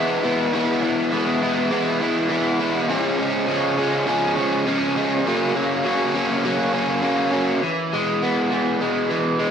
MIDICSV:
0, 0, Header, 1, 2, 480
1, 0, Start_track
1, 0, Tempo, 590551
1, 442, Time_signature, 4, 2, 24, 8
1, 7727, End_track
2, 0, Start_track
2, 0, Title_t, "Overdriven electric guitar"
2, 0, Program_c, 0, 29
2, 0, Note_on_c, 0, 52, 71
2, 0, Note_on_c, 0, 56, 84
2, 0, Note_on_c, 0, 59, 88
2, 0, Note_on_c, 0, 64, 91
2, 179, Note_off_c, 0, 64, 0
2, 189, Note_on_c, 0, 64, 68
2, 190, Note_off_c, 0, 59, 0
2, 200, Note_on_c, 0, 59, 64
2, 202, Note_off_c, 0, 56, 0
2, 206, Note_on_c, 0, 56, 55
2, 424, Note_off_c, 0, 52, 0
2, 434, Note_on_c, 0, 52, 107
2, 437, Note_off_c, 0, 56, 0
2, 437, Note_off_c, 0, 59, 0
2, 440, Note_off_c, 0, 64, 0
2, 440, Note_on_c, 0, 56, 108
2, 447, Note_on_c, 0, 59, 119
2, 450, Note_on_c, 0, 64, 111
2, 663, Note_off_c, 0, 64, 0
2, 672, Note_off_c, 0, 59, 0
2, 673, Note_on_c, 0, 64, 66
2, 682, Note_on_c, 0, 59, 74
2, 683, Note_off_c, 0, 56, 0
2, 686, Note_on_c, 0, 56, 62
2, 898, Note_off_c, 0, 52, 0
2, 908, Note_on_c, 0, 52, 78
2, 909, Note_off_c, 0, 59, 0
2, 910, Note_off_c, 0, 56, 0
2, 913, Note_off_c, 0, 64, 0
2, 913, Note_on_c, 0, 56, 79
2, 919, Note_on_c, 0, 59, 78
2, 923, Note_on_c, 0, 64, 87
2, 1146, Note_off_c, 0, 64, 0
2, 1156, Note_off_c, 0, 59, 0
2, 1156, Note_on_c, 0, 64, 68
2, 1165, Note_on_c, 0, 59, 69
2, 1169, Note_off_c, 0, 56, 0
2, 1172, Note_on_c, 0, 56, 58
2, 1380, Note_off_c, 0, 52, 0
2, 1387, Note_off_c, 0, 56, 0
2, 1390, Note_on_c, 0, 52, 96
2, 1395, Note_off_c, 0, 59, 0
2, 1396, Note_off_c, 0, 64, 0
2, 1397, Note_on_c, 0, 56, 96
2, 1404, Note_on_c, 0, 59, 102
2, 1406, Note_on_c, 0, 64, 95
2, 1620, Note_off_c, 0, 64, 0
2, 1629, Note_on_c, 0, 64, 77
2, 1633, Note_off_c, 0, 59, 0
2, 1640, Note_off_c, 0, 56, 0
2, 1643, Note_on_c, 0, 59, 75
2, 1650, Note_on_c, 0, 56, 61
2, 1854, Note_off_c, 0, 52, 0
2, 1863, Note_on_c, 0, 52, 75
2, 1866, Note_off_c, 0, 56, 0
2, 1871, Note_off_c, 0, 59, 0
2, 1873, Note_off_c, 0, 64, 0
2, 1875, Note_on_c, 0, 56, 68
2, 1881, Note_on_c, 0, 59, 85
2, 1883, Note_on_c, 0, 64, 84
2, 2098, Note_off_c, 0, 64, 0
2, 2107, Note_on_c, 0, 64, 79
2, 2111, Note_off_c, 0, 59, 0
2, 2116, Note_off_c, 0, 56, 0
2, 2120, Note_on_c, 0, 59, 61
2, 2126, Note_on_c, 0, 56, 51
2, 2337, Note_off_c, 0, 52, 0
2, 2339, Note_off_c, 0, 64, 0
2, 2346, Note_off_c, 0, 59, 0
2, 2346, Note_on_c, 0, 49, 103
2, 2348, Note_off_c, 0, 56, 0
2, 2354, Note_on_c, 0, 53, 94
2, 2360, Note_on_c, 0, 56, 122
2, 2364, Note_on_c, 0, 61, 114
2, 2590, Note_off_c, 0, 61, 0
2, 2593, Note_on_c, 0, 61, 82
2, 2595, Note_off_c, 0, 56, 0
2, 2604, Note_on_c, 0, 56, 59
2, 2606, Note_off_c, 0, 53, 0
2, 2609, Note_on_c, 0, 53, 59
2, 2813, Note_off_c, 0, 49, 0
2, 2822, Note_on_c, 0, 49, 73
2, 2827, Note_off_c, 0, 53, 0
2, 2827, Note_off_c, 0, 56, 0
2, 2830, Note_on_c, 0, 53, 82
2, 2837, Note_on_c, 0, 56, 81
2, 2841, Note_off_c, 0, 61, 0
2, 2844, Note_on_c, 0, 61, 77
2, 3066, Note_off_c, 0, 61, 0
2, 3068, Note_off_c, 0, 56, 0
2, 3069, Note_on_c, 0, 61, 74
2, 3078, Note_on_c, 0, 56, 82
2, 3080, Note_off_c, 0, 53, 0
2, 3084, Note_on_c, 0, 53, 62
2, 3292, Note_off_c, 0, 49, 0
2, 3301, Note_off_c, 0, 53, 0
2, 3302, Note_on_c, 0, 49, 77
2, 3309, Note_off_c, 0, 56, 0
2, 3311, Note_on_c, 0, 53, 92
2, 3315, Note_off_c, 0, 61, 0
2, 3319, Note_on_c, 0, 56, 99
2, 3324, Note_on_c, 0, 61, 114
2, 3532, Note_off_c, 0, 61, 0
2, 3541, Note_on_c, 0, 61, 81
2, 3544, Note_off_c, 0, 56, 0
2, 3549, Note_off_c, 0, 53, 0
2, 3554, Note_on_c, 0, 56, 69
2, 3559, Note_on_c, 0, 53, 66
2, 3781, Note_off_c, 0, 49, 0
2, 3786, Note_off_c, 0, 53, 0
2, 3791, Note_on_c, 0, 49, 80
2, 3792, Note_off_c, 0, 56, 0
2, 3796, Note_on_c, 0, 53, 70
2, 3799, Note_off_c, 0, 61, 0
2, 3801, Note_on_c, 0, 56, 75
2, 3809, Note_on_c, 0, 61, 95
2, 4016, Note_off_c, 0, 61, 0
2, 4026, Note_on_c, 0, 61, 69
2, 4027, Note_off_c, 0, 56, 0
2, 4035, Note_off_c, 0, 53, 0
2, 4036, Note_on_c, 0, 56, 72
2, 4045, Note_on_c, 0, 53, 66
2, 4258, Note_off_c, 0, 61, 0
2, 4260, Note_off_c, 0, 49, 0
2, 4263, Note_off_c, 0, 56, 0
2, 4267, Note_off_c, 0, 53, 0
2, 4273, Note_on_c, 0, 42, 94
2, 4275, Note_on_c, 0, 49, 102
2, 4279, Note_on_c, 0, 54, 107
2, 4284, Note_on_c, 0, 58, 115
2, 4286, Note_on_c, 0, 61, 112
2, 4495, Note_off_c, 0, 61, 0
2, 4503, Note_off_c, 0, 58, 0
2, 4505, Note_on_c, 0, 61, 74
2, 4511, Note_off_c, 0, 54, 0
2, 4513, Note_on_c, 0, 58, 64
2, 4521, Note_on_c, 0, 54, 57
2, 4737, Note_off_c, 0, 49, 0
2, 4742, Note_off_c, 0, 54, 0
2, 4747, Note_on_c, 0, 49, 68
2, 4749, Note_off_c, 0, 58, 0
2, 4752, Note_on_c, 0, 54, 75
2, 4755, Note_off_c, 0, 42, 0
2, 4757, Note_off_c, 0, 61, 0
2, 4758, Note_on_c, 0, 58, 88
2, 4766, Note_on_c, 0, 61, 87
2, 4978, Note_off_c, 0, 61, 0
2, 4988, Note_on_c, 0, 61, 76
2, 4990, Note_off_c, 0, 58, 0
2, 4996, Note_off_c, 0, 54, 0
2, 4999, Note_on_c, 0, 58, 71
2, 5006, Note_on_c, 0, 54, 62
2, 5232, Note_off_c, 0, 49, 0
2, 5233, Note_off_c, 0, 54, 0
2, 5233, Note_on_c, 0, 42, 85
2, 5236, Note_off_c, 0, 58, 0
2, 5241, Note_off_c, 0, 61, 0
2, 5241, Note_on_c, 0, 49, 94
2, 5243, Note_on_c, 0, 54, 98
2, 5246, Note_on_c, 0, 58, 110
2, 5251, Note_on_c, 0, 61, 90
2, 5461, Note_off_c, 0, 61, 0
2, 5470, Note_off_c, 0, 58, 0
2, 5471, Note_on_c, 0, 61, 74
2, 5478, Note_off_c, 0, 54, 0
2, 5480, Note_on_c, 0, 58, 76
2, 5487, Note_on_c, 0, 54, 60
2, 5698, Note_off_c, 0, 49, 0
2, 5701, Note_off_c, 0, 54, 0
2, 5706, Note_off_c, 0, 58, 0
2, 5708, Note_on_c, 0, 49, 76
2, 5710, Note_on_c, 0, 54, 78
2, 5716, Note_off_c, 0, 42, 0
2, 5716, Note_off_c, 0, 61, 0
2, 5716, Note_on_c, 0, 58, 81
2, 5726, Note_on_c, 0, 61, 88
2, 5933, Note_off_c, 0, 61, 0
2, 5943, Note_on_c, 0, 61, 79
2, 5945, Note_off_c, 0, 58, 0
2, 5953, Note_off_c, 0, 54, 0
2, 5955, Note_on_c, 0, 58, 72
2, 5963, Note_on_c, 0, 54, 64
2, 6176, Note_off_c, 0, 61, 0
2, 6179, Note_off_c, 0, 49, 0
2, 6182, Note_off_c, 0, 58, 0
2, 6186, Note_off_c, 0, 54, 0
2, 6195, Note_on_c, 0, 52, 64
2, 6444, Note_on_c, 0, 56, 65
2, 6683, Note_on_c, 0, 59, 58
2, 6910, Note_off_c, 0, 52, 0
2, 6920, Note_on_c, 0, 52, 61
2, 7155, Note_off_c, 0, 56, 0
2, 7159, Note_on_c, 0, 56, 63
2, 7390, Note_off_c, 0, 52, 0
2, 7399, Note_on_c, 0, 52, 63
2, 7634, Note_off_c, 0, 56, 0
2, 7637, Note_on_c, 0, 56, 68
2, 7727, Note_off_c, 0, 52, 0
2, 7727, Note_off_c, 0, 56, 0
2, 7727, Note_off_c, 0, 59, 0
2, 7727, End_track
0, 0, End_of_file